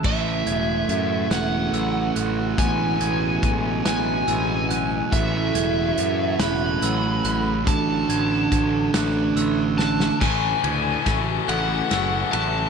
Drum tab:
CC |x-----------|------------|------------|------------|
RD |------------|------------|------------|------------|
HH |--x-x-x-x-x-|x-x-x-x-x-x-|x-x-x-x-x-x-|x-x-x-x-x---|
SD |------o-----|------o-----|------o-----|------o---oo|
BD |o-----------|o---o-------|o-----------|o---o-------|

CC |x-----------|
RD |--x-x-x-x-x-|
HH |------------|
SD |o---o---o---|
BD |o---o-------|